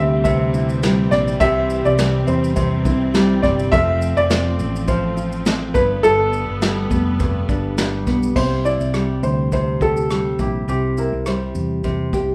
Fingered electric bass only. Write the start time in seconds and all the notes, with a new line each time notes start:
Already playing: D2
1.12 A#1
1.41 C2
1.86 C2
2.28 E2
2.85 C2
3.43 G1
3.73 F1
4.17 F1
4.59 A1
5.75 G1
6.04 G1
6.49 G1
6.91 F1
7.49 G1
8.07 B1
8.36 C2
8.81 C2
9.23 D2
10.39 A#1
10.68 C2
11.13 C2
11.55 E2
12.13 C2